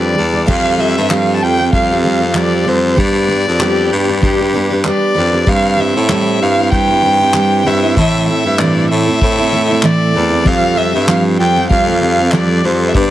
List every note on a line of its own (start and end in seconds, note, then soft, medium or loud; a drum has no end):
0.00 0.14 F2 medium
0.00 0.14 G3 medium
0.00 0.17 D4 medium
0.00 0.17 G4 medium
0.00 0.18 B4 medium
0.00 0.45 D5 medium
0.15 0.46 E2 medium
0.15 0.31 G3 medium
0.15 0.35 D4 medium
0.33 0.46 G3 soft
0.33 0.47 D4 medium
0.46 0.93 F2 loud
0.46 0.79 F3 medium
0.46 0.76 G3 medium
0.46 0.77 C4 medium
0.46 0.79 G4 medium
0.46 0.80 A4 medium
0.46 0.81 F5 medium
0.46 kick loud
0.46 crash medium
0.77 0.96 G3 medium
0.77 0.96 C4 medium
0.77 0.96 G4 medium
0.77 0.94 A4 medium
0.77 1.13 E5 medium
0.96 1.39 G2 medium
0.96 1.10 C4 soft
0.96 1.10 G4 soft
0.96 1.10 A4 soft
1.09 1.58 F3 medium
1.09 1.59 G3 medium
1.09 1.59 C4 medium
1.09 1.58 G4 medium
1.09 1.57 A4 medium
1.09 1.35 F5 medium
1.09 clap loud
1.36 1.44 A5 medium
1.42 1.71 F2 medium
1.42 1.73 G5 medium
1.58 1.72 C4 soft
1.58 1.73 G4 soft
1.58 1.72 A4 soft
1.72 2.63 F2 medium
1.72 1.90 G3 medium
1.72 1.90 C4 medium
1.72 1.90 G4 medium
1.72 1.88 A4 medium
1.72 2.03 F5 medium
1.72 kick medium
1.89 2.03 C4 soft
1.89 2.04 G4 soft
1.89 2.04 A4 soft
2.03 2.21 G3 soft
2.03 2.22 C4 medium
2.03 2.21 G4 medium
2.03 2.19 A4 medium
2.03 2.38 F5 medium
2.20 2.34 C4 soft
2.20 2.35 G4 soft
2.20 2.35 A4 soft
2.34 2.66 F3 medium
2.34 2.64 G3 medium
2.34 2.65 C4 medium
2.34 2.66 G4 medium
2.34 2.67 A4 medium
2.34 2.69 D5 medium
2.34 clap loud
2.65 2.96 F2 medium
2.65 2.95 G3 medium
2.65 2.97 C4 medium
2.65 2.97 G4 medium
2.65 2.98 A4 medium
2.65 3.00 C5 medium
2.96 3.43 G2 medium
2.96 3.28 G3 medium
2.96 3.27 B3 medium
2.96 3.28 D4 medium
2.96 3.29 G4 medium
2.96 3.29 B4 medium
2.96 4.23 D5 medium
2.96 kick loud
3.28 3.46 B3 medium
3.28 3.46 D4 medium
3.28 3.45 G4 medium
3.28 3.44 B4 medium
3.45 3.88 F2 medium
3.45 3.59 D4 soft
3.45 3.59 G4 soft
3.45 3.60 B4 soft
3.59 4.08 G3 medium
3.59 4.08 B3 medium
3.59 4.09 D4 medium
3.59 4.18 G4 medium
3.59 4.08 G4 medium
3.59 4.06 B4 medium
3.59 clap medium
3.92 4.21 G2 loud
4.07 4.21 D4 soft
4.07 4.23 G4 soft
4.07 4.22 B4 soft
4.21 4.86 G2 medium
4.21 4.39 B3 medium
4.21 4.40 D4 medium
4.21 4.67 G4 medium
4.21 4.40 G4 medium
4.21 4.38 B4 medium
4.21 kick medium
4.39 4.53 D4 soft
4.39 4.54 G4 medium
4.39 4.53 B4 medium
4.53 4.70 B3 medium
4.53 4.71 D4 medium
4.53 4.71 G4 medium
4.53 4.69 B4 medium
4.70 4.84 D4 soft
4.70 4.85 G4 soft
4.70 4.85 B4 medium
4.84 5.16 G3 medium
4.84 5.13 B3 medium
4.84 5.15 D4 medium
4.84 5.16 G4 medium
4.84 5.17 B4 medium
4.84 5.50 D5 medium
4.84 clap loud
5.14 5.45 F2 medium
5.14 5.32 B3 medium
5.14 5.33 D4 medium
5.14 5.33 G4 medium
5.14 5.31 B4 medium
5.32 5.46 D4 soft
5.32 5.48 G4 soft
5.32 5.47 B4 soft
5.46 5.92 G2 medium
5.46 5.75 G3 medium
5.46 5.77 C4 medium
5.46 5.79 C5 medium
5.46 5.82 F5 medium
5.46 kick loud
5.76 5.95 G3 medium
5.76 5.95 C4 medium
5.76 5.95 E4 medium
5.76 5.93 C5 medium
5.76 6.44 E5 medium
5.94 6.37 A2 medium
5.94 6.09 C4 soft
5.94 6.09 E4 soft
5.94 6.09 C5 medium
6.09 6.57 G3 medium
6.09 6.58 C4 medium
6.09 6.58 E4 medium
6.09 6.56 C5 medium
6.09 clap medium
6.41 6.70 G2 medium
6.41 6.73 F5 medium
6.57 6.71 C4 soft
6.57 6.72 E4 soft
6.57 6.72 C5 soft
6.72 7.62 G2 medium
6.72 6.89 G3 medium
6.72 6.89 C4 medium
6.72 6.89 E4 medium
6.72 6.87 C5 medium
6.72 7.69 G5 loud
6.72 kick medium
6.88 7.02 C4 soft
6.88 7.04 E4 soft
6.88 7.03 C5 medium
7.02 7.20 G3 medium
7.02 7.20 C4 medium
7.02 7.20 E4 medium
7.02 7.18 C5 medium
7.19 7.33 C4 soft
7.19 7.34 E4 soft
7.19 7.34 C5 soft
7.33 7.63 G3 medium
7.33 7.64 C4 medium
7.33 7.66 E4 medium
7.33 7.66 C5 medium
7.33 clap loud
7.64 7.94 G2 medium
7.64 7.82 G3 medium
7.64 7.83 C4 medium
7.64 7.82 E4 medium
7.64 7.80 C5 medium
7.64 7.97 E5 medium
7.82 7.97 C4 soft
7.82 7.97 E4 soft
7.82 7.96 C5 soft
7.96 8.28 A2 medium
7.96 8.41 A2 medium
7.96 8.28 E3 medium
7.96 8.26 A3 medium
7.96 8.27 C4 medium
7.96 8.27 E4 medium
7.96 8.29 A4 medium
7.96 8.27 E5 medium
7.96 kick loud
8.27 8.45 A3 medium
8.27 8.45 C4 medium
8.27 8.44 E4 medium
8.27 8.43 A4 medium
8.27 8.60 E5 medium
8.44 8.87 G2 medium
8.44 8.58 A3 soft
8.44 8.58 C4 soft
8.44 8.59 E4 soft
8.44 8.59 A4 medium
8.58 9.07 A2 medium
8.58 9.07 E3 medium
8.58 9.07 A3 medium
8.58 9.08 C4 medium
8.58 9.06 E4 medium
8.58 9.05 A4 medium
8.58 8.90 D5 medium
8.58 clap loud
8.90 9.19 A2 medium
8.90 9.87 E5 medium
9.06 9.19 A3 soft
9.06 9.21 C4 soft
9.06 9.22 E4 soft
9.06 9.21 A4 soft
9.20 9.85 A2 loud
9.20 9.38 A3 medium
9.20 9.39 C4 medium
9.20 9.38 E4 medium
9.20 9.37 A4 medium
9.20 kick loud
9.38 9.51 A3 soft
9.38 9.52 C4 soft
9.38 9.53 E4 soft
9.38 9.52 A4 soft
9.52 9.69 A3 medium
9.52 9.69 C4 medium
9.52 9.68 E4 medium
9.52 9.67 A4 medium
9.68 9.83 A3 soft
9.68 9.82 C4 soft
9.68 9.83 E4 soft
9.68 9.83 A4 soft
9.82 10.14 A2 medium
9.82 10.15 E3 medium
9.82 10.13 A3 medium
9.82 10.14 C4 medium
9.82 10.15 E4 medium
9.82 10.15 A4 medium
9.82 10.48 D5 medium
9.82 clap loud
10.14 10.44 E2 medium
10.14 10.31 A3 medium
10.14 10.31 C4 medium
10.14 10.30 E4 medium
10.14 10.29 A4 medium
10.30 10.45 A3 soft
10.30 10.45 C4 soft
10.30 10.46 E4 soft
10.30 10.45 A4 soft
10.45 10.91 F2 loud
10.45 10.76 F3 medium
10.45 12.90 G3 medium
10.45 10.75 G3 medium
10.45 10.76 C4 medium
10.45 12.91 C4 medium
10.45 10.77 F4 medium
10.45 12.92 F4 medium
10.45 10.78 A4 medium
10.45 10.79 F5 loud
10.45 kick loud
10.49 12.93 A4 medium
10.76 10.94 G3 medium
10.76 10.94 C4 medium
10.76 10.93 F4 medium
10.76 10.92 A4 medium
10.76 11.08 E5 medium
10.93 11.36 G2 medium
10.93 11.07 C4 soft
10.93 11.08 F4 soft
10.93 11.08 A4 soft
11.07 11.56 F3 medium
11.07 11.56 G3 medium
11.07 11.57 C4 medium
11.07 11.56 F4 medium
11.07 11.54 A4 medium
11.07 11.23 F5 medium
11.07 clap medium
11.39 11.68 F2 medium
11.39 11.69 G5 medium
11.55 11.69 C4 soft
11.55 11.70 F4 soft
11.55 11.70 A4 soft
11.69 12.60 F2 medium
11.69 11.87 G3 medium
11.69 11.88 C4 medium
11.69 11.87 F4 medium
11.69 11.85 A4 medium
11.69 12.00 F5 medium
11.69 kick loud
11.86 12.01 C4 soft
11.86 12.02 F4 soft
11.86 12.01 A4 soft
12.01 12.18 G3 medium
12.01 12.19 C4 medium
12.01 12.18 F4 medium
12.01 12.17 A4 medium
12.01 12.34 F5 medium
12.18 12.33 C4 soft
12.18 12.33 F4 soft
12.18 12.32 A4 soft
12.32 12.64 F3 medium
12.32 12.62 G3 medium
12.32 12.64 C4 medium
12.32 12.65 F4 medium
12.32 12.65 A4 medium
12.32 12.66 D5 medium
12.32 clap loud
12.64 12.92 F2 medium
12.64 12.93 G3 medium
12.64 12.94 C4 medium
12.64 12.95 F4 medium
12.64 12.96 A4 medium
12.64 12.90 C5 medium
12.89 12.97 E5 medium
12.93 13.10 G2 medium
12.93 13.10 G3 medium
12.93 13.10 B3 medium
12.93 13.10 D4 medium
12.93 13.10 G4 medium
12.93 13.10 B4 medium
12.93 13.10 D5 medium
12.93 kick loud